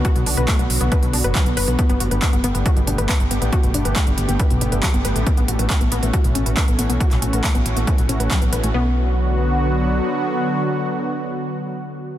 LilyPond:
<<
  \new Staff \with { instrumentName = "Synth pluck" } { \time 4/4 \key b \minor \tempo 4 = 138 fis'16 b,16 d'16 b'16 a16 b16 r16 b16 b'16 b,16 d'16 b'16 fis16 b16 b'16 b16 | b16 b16 fis'16 b'16 b16 b16 b16 b16 fis'16 b,16 d'16 b'16 b16 b16 b16 b16 | fis'16 b,16 d'16 b'16 a16 b16 r16 b16 b'16 b,16 d'16 b'16 fis16 b16 b'16 a16 | b16 b16 fis'16 b'16 b16 b16 b16 b16 fis'16 b,16 cis'16 b'16 b16 b16 b16 b16 |
fis'16 b,16 cis'16 b'16 a16 b16 r16 b16 b'16 b,16 cis'16 b'16 fis16 b16 b'16 a16 | b8 r2. r8 | r1 | }
  \new Staff \with { instrumentName = "Analog synth pad" } { \clef bass \time 4/4 \key b \minor r1 | r1 | r1 | r1 |
r1 | <d fis b fis'>1~ | <d fis b fis'>1 | }
  \new Staff \with { instrumentName = "FM bass" } { \clef bass \time 4/4 \key b \minor r16 b,,16 b,,16 b,,16 r16 b,,16 b,,16 b,,16 r16 b,,16 b,,16 fis,,16 r16 b,,16 fis,,16 b,,16 | r16 g,,16 g,,16 g,,16 r16 g,,16 g,,16 g,,16 r16 g,,16 g,,16 g,,16 r16 g,,16 g,,16 a,,16 | r16 g,,16 g,,16 g,,16 r16 g,,16 g,,16 g,,16 r16 g,,16 g,,16 g,,16 r16 g,,16 g,,16 a,,16 | r16 a,,16 a,,16 a,,16 r16 a,,16 a,,16 a,,16 r16 a,,16 a,,16 a,,16 r16 a,,16 a,,16 b,,16 |
r16 a,,16 a,,16 a,,16 r16 a,,16 a,,16 a,,16 r16 a,,16 a,,16 a,,16 r16 a,,16 a,,16 a,,16 | b,,2. r4 | r1 | }
  \new DrumStaff \with { instrumentName = "Drums" } \drummode { \time 4/4 <hh bd>16 hh16 hho16 hh16 <hc hh bd>16 hh16 hho16 hh16 <hh bd>16 hh16 hho16 hh16 <hc hh bd>16 hh16 hho16 hh16 | <hh bd>16 hh16 hh16 hh16 <hc hh bd>16 hh16 hh16 hh16 <hh bd>16 hh16 hh16 hh16 <hc hh bd>16 hh16 hh16 hh16 | <hh bd>16 hh16 hh16 hh16 <hc hh bd>16 hh16 hh16 hh16 <hh bd>16 hh16 hh16 hh16 <hc hh bd>16 hh16 hh16 hh16 | <hh bd>16 hh16 hh16 hh16 <hc hh bd>16 hh16 hh16 hh16 <hh bd>16 hh16 hh16 hh16 <hc hh bd>16 hh16 hh16 hh16 |
<hh bd>16 <hc hh>16 hh16 hh16 <hc hh bd>16 hh16 hh16 hh16 <hh bd>16 hh16 hh16 hh16 <hc hh bd>16 hh16 hh16 hh16 | r4 r4 r4 r4 | r4 r4 r4 r4 | }
>>